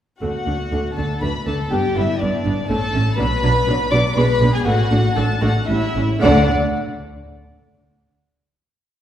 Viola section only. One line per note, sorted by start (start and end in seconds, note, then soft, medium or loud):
0.21 0.29 A3 soft
0.21 0.29 D4 soft
0.46 0.54 A3 soft
0.46 0.54 D4 soft
0.72 0.80 A3 soft
0.72 0.80 D4 soft
0.97 1.05 A3 soft
0.97 1.05 D4 soft
1.21 1.29 A3 soft
1.21 1.29 D4 soft
1.46 1.54 A3 soft
1.46 1.54 D4 soft
1.72 1.80 B3 soft
1.72 1.80 D4 soft
1.96 2.04 B3 soft
1.96 2.04 D4 soft
2.21 2.29 B3 soft
2.21 2.29 D4 soft
2.45 2.53 B3 soft
2.45 2.53 D4 soft
2.69 2.77 A3 soft
2.69 2.77 C#4 soft
2.94 3.02 A3 soft
2.94 3.02 C#4 soft
3.18 3.26 F#3 medium
3.18 3.26 D4 medium
3.42 3.50 F#3 soft
3.42 3.50 D4 medium
3.67 3.75 F#3 medium
3.67 3.75 D4 medium
3.91 3.99 F#3 medium
3.91 3.99 D4 medium
4.16 4.24 G#3 medium
4.16 4.24 D4 soft
4.41 4.49 G#3 medium
4.41 4.49 D4 medium
4.66 4.74 A3 medium
4.66 4.74 D4 medium
4.91 4.99 A3 soft
4.91 4.99 D4 medium
5.16 5.24 A3 medium
5.16 5.24 D4 medium
5.42 5.50 A3 medium
5.42 5.50 D4 medium
5.69 5.77 G3 soft
5.69 5.77 C#4 soft
5.96 6.04 G3 soft
5.96 6.04 C#4 soft
6.22 6.51 A3 medium
6.22 6.51 D4 medium